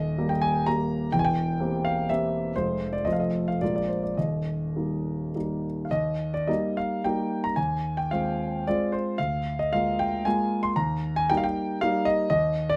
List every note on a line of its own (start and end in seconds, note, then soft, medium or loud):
0.00 1.09 D#1 soft
0.00 1.09 D#2 soft
0.00 0.30 D#5 medium
0.18 0.63 G3 soft
0.18 0.63 A#3 soft
0.18 0.63 G4 soft
0.29 0.42 G5 medium
0.42 0.66 G#5 medium
0.66 1.09 G3 soft
0.66 1.09 A#3 soft
0.66 1.10 G4 soft
0.66 1.13 A#5 medium
1.12 2.52 E1 soft
1.12 2.52 E2 soft
1.12 1.19 G5 medium
1.19 1.25 G#5 medium
1.25 1.85 G5 medium
1.60 2.05 A#3 soft
1.60 2.05 C4 soft
1.60 2.06 G4 soft
1.85 2.09 F5 medium
2.09 2.52 A#3 soft
2.09 2.53 C4 soft
2.09 2.53 G4 soft
2.09 2.56 E5 medium
2.56 3.04 F1 soft
2.56 3.04 F2 soft
2.56 3.02 G#3 soft
2.56 3.02 C4 soft
2.56 3.02 F4 soft
2.56 2.92 C5 medium
2.93 3.06 D5 medium
3.05 3.60 F1 soft
3.05 3.60 F2 soft
3.05 3.57 A3 soft
3.05 3.58 C4 soft
3.05 3.58 F4 soft
3.05 3.13 D#5 medium
3.13 3.20 F5 soft
3.20 3.47 D#5 medium
3.48 3.62 F5 medium
3.61 4.16 A#1 soft
3.61 4.16 A#2 soft
3.61 4.13 G#3 soft
3.61 4.14 A#3 soft
3.61 4.14 F4 soft
3.61 3.74 D5 medium
3.76 3.89 D5 soft
3.88 4.03 C5 soft
4.03 4.17 D5 soft
4.17 5.88 D#1 soft
4.17 5.88 D#2 soft
4.17 5.64 D#5 soft
4.76 5.31 G3 soft
4.76 5.31 A#3 soft
4.76 5.32 D#4 soft
5.35 5.87 G3 soft
5.35 5.88 A#3 soft
5.35 5.88 D#4 soft
5.85 5.92 F5 soft
5.91 6.47 D#2 soft
5.91 6.34 D#5 medium
6.34 6.49 D5 medium
6.47 7.01 G3 soft
6.47 7.01 A#3 soft
6.47 7.01 D#4 soft
6.47 6.77 D#5 medium
6.77 7.05 F5 medium
7.04 7.53 G3 soft
7.04 7.53 A#3 soft
7.04 7.53 D#4 soft
7.04 7.43 G5 medium
7.44 7.57 A#5 medium
7.56 8.09 D#2 soft
7.56 7.96 G#5 medium
7.97 8.11 G5 medium
8.11 8.63 G#3 soft
8.11 8.63 C4 soft
8.11 8.63 F4 soft
8.11 8.66 F5 medium
8.67 9.15 G#3 soft
8.67 9.15 C4 soft
8.67 9.16 F4 soft
8.67 8.93 D5 medium
8.92 9.18 C5 medium
9.18 9.71 D2 soft
9.18 9.58 F5 medium
9.59 9.73 D#5 medium
9.73 10.22 G#3 soft
9.73 10.22 A#3 soft
9.73 10.22 F4 soft
9.73 9.99 F5 medium
9.99 10.25 G5 medium
10.25 10.72 G#3 soft
10.25 10.72 A#3 soft
10.25 10.73 F4 soft
10.25 10.63 G#5 medium
10.63 10.76 C6 medium
10.76 11.28 D#2 medium
10.76 11.16 A#5 medium
11.16 11.30 G#5 medium
11.30 11.78 G3 soft
11.30 11.78 A#3 soft
11.30 11.78 D#4 soft
11.30 11.37 G5 medium
11.37 11.44 F5 medium
11.44 11.81 G5 medium
11.81 12.27 G3 soft
11.81 12.28 A#3 soft
11.81 12.28 D#4 medium
11.81 12.06 F5 medium
12.05 12.28 D#5 medium
12.30 12.77 D#2 medium
12.30 12.69 D#5 medium
12.69 12.77 D5 medium